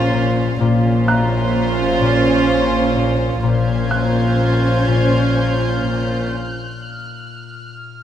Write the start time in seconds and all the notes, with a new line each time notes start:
Already playing: A#1 A#2 A#3 C#4 F4 C5
0.14 A#2
0.60 A#1 A#2 C#4 F4 C5
1.07 A#3 A#5 F#6
1.54 A#3
2.01 A#2
2.49 A#3
2.96 A#2
3.43 A#1 A#2 C#4 F4 C5 F6 G6 G#6
3.90 A#3 F#6
4.39 A#3
4.87 A#2
5.35 A#3
5.83 A#2
5.93 G6
6.66 F#6